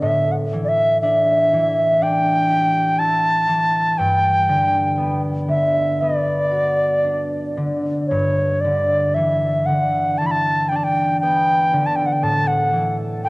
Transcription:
Already playing: B3 D4
0.01 A2 E5
0.32 F#5
0.53 E3
0.64 D5
0.69 E5
1.01 D4 E5
1.53 E3
2.02 D4 G5
2.50 G4
2.99 E4 A5
3.48 E3
3.98 G2 G5
4.49 D3
4.98 B3
5.48 D3 E5
6.01 B3 D5
6.51 F#4
7.04 D4
7.57 D3
8.07 G2 C#5
8.61 D3 D5
9.14 E3 E5
9.66 D3 F#5
10.18 E3 A5
10.26 B5
10.31 A5
10.69 D4 G5
10.76 A5
10.84 G5
11.20 B3 G5
11.73 D3
11.86 A5
11.96 G5
12.06 F#5
12.13 G5
12.23 A2 A5
12.47 F#5
12.73 E3
13.24 A3 G5

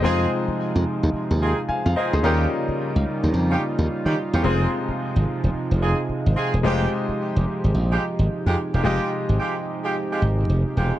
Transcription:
Already playing: D#5
0.02 F2 C3 F3 G#3 C4 D#4 F4 G#4 C5
0.48 muted slap bass stroke
0.76 F2
1.03 D#2
1.14 muted slap bass stroke
1.31 D#2
1.41 C4 D#4 F4 G#4
1.69 F5 G#5, muted slap bass stroke
1.86 F2 F5
1.95 C4 D#4 F4 G#4 C5 D#5
2.13 D2 G#4 C5
2.23 D#2 C#3 G3 A#3 C#4 D#4 F4 G4 A#4
2.68 muted slap bass stroke
2.96 C#2
3.23 D#2
3.34 F2
3.50 C#4 D#4 F4 G4
3.79 D#2
4.05 D#3 C#4 D#4 F4 G4
4.33 E2 C#4 D#4 F4 G4
4.43 F1 C3 F3 G#3 C4 D#4 F4 G#4 C5
4.88 muted slap bass stroke
5.16 G#1
5.44 F1
5.54 muted slap bass stroke
5.71 F1
5.81 C4 D#4 F4 G#4
6.09 muted slap bass stroke
6.26 G#1
6.36 C4 D#4 F4 G#4
6.54 E1
6.63 F1 F3 G#3 D#4 F4 G4 C5
7.09 muted slap bass stroke
7.36 F1
7.64 G#1
7.74 A#1
7.91 G#3 D#4 F4 G4
8.19 G#1
8.46 F2 G#3 D#4 F4 G4
8.73 E1 G#3 D#4 F4 G4
8.83 F1 C3 F3 G#3 D#4 F4 G4 D#5
9.29 G#1
9.39 G#3 D#4 F4 G4
9.83 G#3 D#4 F4 G4
10.11 G#3 D#4 F4 G4
10.22 G#1
10.49 F1
10.76 E1 G#3 D#4 F4 G4

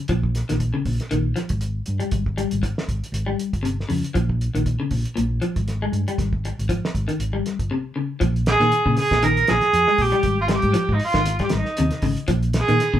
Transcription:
0.08 A#1 F3, kick, closed hi-hat
0.23 kick
0.35 snare, closed hi-hat
0.49 A#1 D#3, snare, closed hi-hat
0.60 kick, closed hi-hat
0.74 C#3
0.85 A#1, kick, open hi-hat
1.00 snare, closed hi-hat
1.11 A#1 D#3, closed hi-hat
1.36 F3, snare, closed hi-hat
1.49 G#1, kick, closed hi-hat
1.61 closed hi-hat
1.86 G2, closed hi-hat
2.00 G3, muted fingered electric bass stroke, closed hi-hat
2.11 G#1, kick, closed hi-hat
2.26 kick
2.38 G3, closed hi-hat
2.51 G#1, closed hi-hat
2.63 muted clean electric guitar stroke, kick, closed hi-hat
2.78 snare
2.89 G#1, kick, closed hi-hat
3.04 closed hi-hat
3.12 G#1, closed hi-hat
3.26 G3
3.40 closed hi-hat
3.53 G1, kick, closed hi-hat
3.63 C3, closed hi-hat
3.80 snare
3.89 F2 C#3, open hi-hat
4.03 muted fingered electric bass stroke, closed hi-hat
4.14 A#1 F3, kick, closed hi-hat
4.29 kick
4.41 closed hi-hat
4.54 A#1 D#3, closed hi-hat
4.66 kick, closed hi-hat
4.80 C#3
4.91 A#1, kick, open hi-hat
5.05 closed hi-hat
5.16 A#1 A#2, closed hi-hat
5.42 F3, closed hi-hat
5.56 G#1, kick, closed hi-hat
5.68 snare, closed hi-hat
5.82 G#3
5.92 G2, closed hi-hat
6.08 G3, muted fingered electric bass stroke, closed hi-hat
6.18 G#1, kick, snare, closed hi-hat
6.33 kick
6.45 muted clean electric guitar stroke, closed hi-hat
6.59 G#1, closed hi-hat
6.69 F3, kick, closed hi-hat
6.85 snare
6.95 G#1, kick, closed hi-hat
7.08 D#3, closed hi-hat
7.19 G#1, closed hi-hat
7.33 G3
7.46 snare, closed hi-hat
7.59 G1, kick, closed hi-hat
7.71 C3
7.96 C#3
8.20 A#1 F3, kick, closed hi-hat
8.36 closed hi-hat
8.46 G#4, snare, closed hi-hat
8.60 A#2 D#3, snare, closed hi-hat
8.72 closed hi-hat
8.86 A#2 C#3, kick
8.97 G#4, snare, open hi-hat
9.11 A#1, kick, snare, closed hi-hat
9.23 D#3 A#4, closed hi-hat
9.37 closed hi-hat
9.47 A#1 F3 G#4, snare, closed hi-hat
9.61 muted fingered electric bass stroke, snare, closed hi-hat
9.73 F2, closed hi-hat
9.88 G#3, snare
9.98 A#1 G4, kick, open hi-hat
10.12 G3, closed hi-hat
10.23 G#1, kick, closed hi-hat
10.41 F4
10.48 G3, snare, closed hi-hat
10.54 G4
10.62 G#2, kick, closed hi-hat
10.74 F3, snare, closed hi-hat
10.89 G#2, kick
10.95 D#4
10.99 open hi-hat
11.04 F4
11.13 G#1 D#3, kick, snare, closed hi-hat
11.26 snare, closed hi-hat
11.39 G3, kick, snare, closed hi-hat
11.44 G4
11.49 G#1, snare, closed hi-hat
11.56 D#4
11.65 snare
11.77 D#2 C3, closed hi-hat
11.91 snare, closed hi-hat
12.02 G#1 C#3, kick, open hi-hat
12.17 closed hi-hat
12.28 A#1 F3, kick, closed hi-hat
12.43 closed hi-hat
12.53 snare, closed hi-hat
12.59 G#4
12.68 A#2 D#3, snare, closed hi-hat
12.80 snare, closed hi-hat
12.94 A#2 C#3, kick

